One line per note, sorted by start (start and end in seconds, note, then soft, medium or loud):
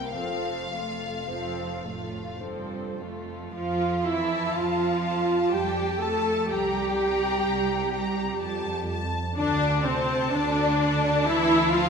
0.00 0.13 C2 soft
0.00 0.14 C3 soft
0.00 0.13 A#3 soft
0.00 0.12 C4 soft
0.00 0.14 E4 soft
0.00 0.14 A#4 soft
0.00 0.14 G5 soft
0.13 3.34 F1 soft
0.13 1.18 F2 soft
0.13 0.68 F3 soft
0.13 0.68 C4 soft
0.13 0.68 A4 soft
0.13 0.68 C5 soft
0.13 2.38 F5 medium
0.72 1.29 A3 soft
0.72 1.29 F4 soft
0.72 1.26 A4 soft
1.27 1.81 F2 soft
1.27 1.86 F3 soft
1.27 1.86 C4 soft
1.27 1.83 A4 soft
1.27 1.85 C5 soft
1.84 2.42 A2 soft
1.84 2.43 A3 soft
1.84 2.41 F4 soft
1.84 2.39 A4 soft
2.40 3.00 G2 soft
2.40 2.96 F3 soft
2.40 2.96 C4 soft
2.40 2.95 A4 soft
2.40 2.95 C5 soft
2.98 3.55 F2 soft
2.98 3.55 A3 soft
2.98 3.54 F4 soft
2.98 3.54 A4 soft
3.54 4.44 F2 medium
3.54 4.02 F3 medium
3.54 4.03 F4 medium
3.54 4.02 F5 medium
4.04 4.55 E3 medium
4.04 4.55 E4 medium
4.04 4.55 E5 medium
4.04 5.02 A5 soft
4.53 5.40 F2 medium
4.53 5.52 F3 medium
4.53 5.52 F4 medium
4.53 5.51 F5 medium
5.04 5.99 A5 soft
5.51 6.38 F2 medium
5.51 6.01 G3 medium
5.51 6.01 G4 medium
5.51 5.99 G5 medium
5.99 6.49 A3 medium
5.99 6.49 A4 medium
5.99 6.50 A5 medium
5.99 6.50 A5 soft
6.49 7.34 C2 medium
6.49 8.88 G3 medium
6.49 8.84 G4 medium
6.49 8.88 G5 medium
6.49 6.99 A#5 soft
7.00 7.92 A#5 medium
7.44 8.29 C2 medium
7.94 8.40 A#5 soft
8.39 9.24 F2 medium
8.39 8.88 A5 medium
8.89 9.36 A5 medium
9.35 10.21 D2 medium
9.35 9.81 D3 medium
9.35 9.81 D4 medium
9.35 9.81 D5 medium
9.35 9.84 A5 medium
9.84 10.33 C3 medium
9.84 10.33 C4 medium
9.84 10.33 C5 medium
9.84 10.79 A5 medium
10.32 11.15 D2 medium
10.32 11.27 D3 medium
10.32 11.27 D4 medium
10.32 11.27 D5 medium
10.82 11.70 A5 medium
11.26 11.89 D2 medium
11.26 11.72 E3 medium
11.26 11.71 E4 loud
11.26 11.72 E5 medium
11.71 11.89 F3 medium
11.71 11.89 F4 loud
11.71 11.89 F5 medium
11.71 11.89 A5 medium